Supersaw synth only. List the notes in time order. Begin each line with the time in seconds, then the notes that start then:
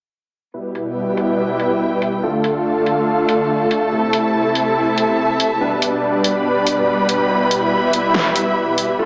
0.54 B2 G3 E4 B4
2.23 D3 A3 F4 A4
3.92 C3 E4 A4
5.61 B2 G3 D4 B4
7.30 E4
8.99 D3 A3 F4 A4